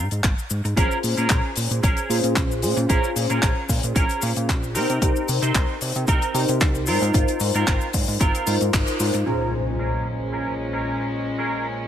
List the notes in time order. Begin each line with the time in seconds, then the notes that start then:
0.11 G#2, closed hi-hat, maracas
0.24 G#1, kick, clap, closed hi-hat, maracas
0.38 muted clean electric guitar stroke, maracas
0.50 G#2, maracas
0.64 G#2, muted clean electric guitar stroke, closed hi-hat, maracas
0.76 A#1 C#4 F4 G#4 A#4 C5, kick, closed hi-hat, maracas
0.91 maracas
1.03 A#2, open hi-hat, maracas
1.17 A#2 C#4 G#4 A#4, closed hi-hat, maracas
1.29 A#1, kick, clap, closed hi-hat, maracas
1.56 A#2, open hi-hat, maracas
1.71 A#2, closed hi-hat, maracas
1.83 A#1 C#4 G#4 A#4, kick, closed hi-hat, maracas
1.97 closed hi-hat, maracas
2.09 A#2 C#4 F4 G#4 C5, open hi-hat, maracas
2.24 A#2, closed hi-hat, maracas
2.36 A#1, kick, clap, closed hi-hat, maracas
2.50 muted clean electric guitar stroke, maracas
2.62 A#2 C#4 F4 G#4 C5, open hi-hat, maracas
2.77 A#2, muted clean electric guitar stroke, closed hi-hat, maracas
2.89 A#1 C#4 F4 G#4 A#4 C5, kick, closed hi-hat, maracas
3.04 maracas
3.16 A#2, open hi-hat, maracas
3.30 A#2 C#4 G#4 A#4, closed hi-hat, maracas
3.42 A#1, kick, clap, closed hi-hat, maracas
3.69 A#2, kick, open hi-hat, maracas
3.83 A#2, closed hi-hat, maracas
3.95 A#1 C#4 G#4 A#4, kick, closed hi-hat, maracas
4.09 closed hi-hat, maracas
4.22 A#2, open hi-hat, maracas
4.36 A#2, closed hi-hat, maracas
4.49 A#1, kick, clap, closed hi-hat, maracas
4.62 muted clean electric guitar stroke, maracas
4.75 C3 C4 D#4 G4 A#4 C5, open hi-hat, maracas
4.89 C3, closed hi-hat, maracas
5.01 C2 D#4 G4 A#4 C5, kick, closed hi-hat, maracas
5.16 maracas
5.28 C3, open hi-hat, maracas
5.42 C3 C4 D#4 C5, closed hi-hat, maracas
5.55 C2, kick, clap, closed hi-hat, maracas
5.81 C3, open hi-hat, maracas
5.95 C3, closed hi-hat, maracas
6.07 C2 C4 D#4 A#4, kick, closed hi-hat, maracas
6.22 closed hi-hat, maracas
6.34 C3 D#4 G4 A#4 C5, open hi-hat, maracas
6.48 C3, closed hi-hat, maracas
6.60 C2, kick, clap, closed hi-hat, maracas
6.75 muted clean electric guitar stroke, maracas
6.86 G#2 C4 D#4 F4 A#4 C5, open hi-hat, maracas
7.01 G#2, closed hi-hat, maracas
7.13 G#1 D#4 F4 A#4 C5, kick, closed hi-hat, maracas
7.28 closed hi-hat, maracas
7.40 G#2, open hi-hat, maracas
7.54 G#2 C4 F4 A#4, closed hi-hat, maracas
7.67 G#1, kick, clap, closed hi-hat, maracas
7.81 maracas
7.93 G#2, kick, open hi-hat, maracas
8.08 G#2, open hi-hat, maracas
8.20 G#1 C4 F4 A#4, kick, closed hi-hat, maracas
8.35 closed hi-hat, maracas
8.46 G#2 D#4 F4 A#4 C5, open hi-hat, maracas
8.61 G#2, closed hi-hat, maracas
8.73 G#1, kick, clap, closed hi-hat, maracas
8.87 muted clean electric guitar stroke, closed hi-hat, maracas
9.00 G#2 D#4 F4 A#4 C5, open hi-hat, maracas
9.14 G#2, muted clean electric guitar stroke, closed hi-hat, maracas
9.26 A#2 G#3 C#4 F4 G#4 A#4 C5, closed hi-hat, impact
9.67 closed hi-hat
9.79 C#4 G#4 A#4, closed hi-hat
10.21 closed hi-hat
10.32 C#4 G#4 A#4, closed hi-hat
10.73 C#4 G#4 A#4, closed hi-hat
10.85 closed hi-hat
11.00 closed hi-hat
11.26 closed hi-hat
11.38 C#4 G#4 A#4, closed hi-hat
11.80 closed hi-hat